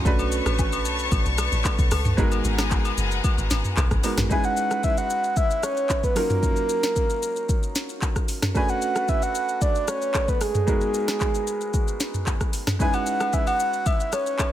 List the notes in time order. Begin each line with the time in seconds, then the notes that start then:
0.05 B1 A3 C#4 D4 F#4 B4 C#5 A5 C#6, kick, shaker
0.19 high agogo, shaker
0.32 shaker
0.46 A1, cross-stick, high agogo, shaker
0.58 kick, low woodblock, shaker
0.72 high agogo, shaker
0.85 B1, shaker
0.99 shaker
1.11 A1, kick, high agogo, shaker
1.26 B1, shaker
1.38 cross-stick, high agogo, shaker
1.52 A1, shaker
1.64 kick, clap, high agogo, shaker
1.79 B1, kick, shaker
1.91 C#2, cross-stick, open hi-hat, high agogo, shaker
2.05 mid tom, shaker
2.17 G#1 G#3 B3 D#4 F#4 G#4 A#4 F#5 G#5 A#5, kick, shaker
2.31 high agogo, shaker
2.44 G#1, shaker
2.58 cross-stick, snare, high agogo, shaker
2.71 kick, clap, low woodblock, shaker
2.85 high agogo, shaker
2.98 F#1, shaker
3.11 shaker
3.24 kick, high agogo, shaker
3.38 G#1, shaker
3.51 G#1, snare, high agogo, shaker
3.64 mid tom, shaker
3.77 B1, kick, clap, high agogo, shaker
3.91 G#1, kick, cross-stick, shaker
4.04 G#3 B3 D#4 F#4 A#4, open hi-hat, high agogo, shaker
4.17 G#1, cross-stick, snare, mid tom, shaker
4.30 G#3 C#4 D#4 E4 B4 G#5, kick, shaker
4.44 F#5, shaker
4.57 shaker
4.71 cross-stick, shaker
4.83 E5, kick, shaker
4.97 F#5, shaker
5.10 shaker
5.24 shaker
5.36 E5, kick, shaker
5.51 shaker
5.63 C#5, cross-stick, shaker
5.77 shaker
5.89 kick, clap, shaker
6.04 B4, kick, shaker
6.15 F#3 C#4 D#4 F4 A#4, cross-stick, open hi-hat, shaker
6.30 mid tom, shaker
6.43 kick, shaker
6.56 shaker
6.69 shaker
6.83 snare, shaker
6.96 kick, shaker
7.10 shaker
7.23 shaker
7.36 shaker
7.49 kick, shaker
7.63 shaker
7.75 snare, shaker
7.89 shaker
8.02 kick, clap, shaker
8.16 kick, cross-stick, shaker
8.28 open hi-hat, shaker
8.42 cross-stick, snare, mid tom, shaker
8.54 A3 C#4 D4 F#4 B4 G#5, kick, shaker
8.69 F#5, shaker
8.82 shaker
8.96 cross-stick, shaker
9.08 E5, kick, shaker
9.22 F#5, shaker
9.35 shaker
9.49 shaker
9.61 D5, kick, shaker
9.75 shaker
9.88 C#5, cross-stick, shaker
10.02 shaker
10.14 kick, clap, shaker
10.28 B4, kick, shaker
10.41 G#4, cross-stick, open hi-hat, shaker
10.55 mid tom, shaker
10.67 G#3 B3 D#4 F#4 A#4, kick, shaker
10.81 shaker
10.94 shaker
11.08 cross-stick, snare, shaker
11.20 kick, clap, shaker
11.35 shaker
11.47 shaker
11.61 shaker
11.74 kick, shaker
11.88 shaker
12.00 snare, shaker
12.14 mid tom, shaker
12.26 kick, clap, shaker
12.41 kick, cross-stick, shaker
12.53 open hi-hat, shaker
12.67 cross-stick, snare, mid tom, shaker
12.79 G#3 C#4 D#4 E4 B4 G#5, kick, shaker
12.93 F#5, high agogo, shaker
13.06 shaker
13.20 cross-stick, high agogo, shaker
13.33 E5, kick, low woodblock, shaker
13.47 F#5, high agogo, shaker
13.60 shaker
13.73 shaker
13.86 E5, kick, high agogo, shaker
14.00 shaker
14.12 C#5, cross-stick, high agogo, shaker
14.26 shaker
14.39 kick, clap, high agogo, low woodblock, shaker